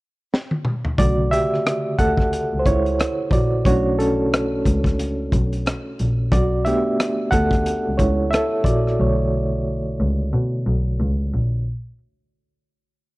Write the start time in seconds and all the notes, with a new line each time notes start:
0.34 snare
0.51 high tom
0.65 mid tom
0.85 floor tom
0.98 B1 C#3 D3 A3 F#4 D5, kick, closed hi-hat
1.31 G4 E5, closed hi-hat
1.54 cross-stick
1.66 cross-stick, closed hi-hat
1.99 D2 A4 F#5, kick, closed hi-hat
2.17 kick, cross-stick
2.33 closed hi-hat
2.53 C#2
2.59 C5
2.66 C#2 E4 C#5, kick, closed hi-hat
2.86 closed hi-hat
2.99 cross-stick, closed hi-hat
3.31 A#1 F#4 D5, kick, closed hi-hat
3.65 B1 A3 C#4 D4 F#4 C#5, kick, closed hi-hat
3.99 C#4 A4, closed hi-hat
4.33 cross-stick, closed hi-hat
4.65 C#2, kick, closed hi-hat
4.84 kick, cross-stick, closed hi-hat
4.99 closed hi-hat
5.32 B1, kick, closed hi-hat
5.53 closed hi-hat
5.66 cross-stick, closed hi-hat
5.99 A#1, closed hi-hat
6.32 B1 F#4 D5, kick, closed hi-hat
6.65 A3 B3 D4 G4 E5, closed hi-hat
7.00 cross-stick, closed hi-hat
7.31 D2 A4 F#5, kick, closed hi-hat
7.51 kick, cross-stick, closed hi-hat
7.66 closed hi-hat
7.87 C#2
7.98 C#2 E4 C#5, kick, closed hi-hat
8.31 A4 E5, cross-stick, closed hi-hat
8.64 A#1 F#4 D5, kick, closed hi-hat
8.87 cross-stick
9.00 B1 D3 A3 C#5
10.00 C#2
10.33 B2
10.67 B1
11.00 C#2
11.34 A#1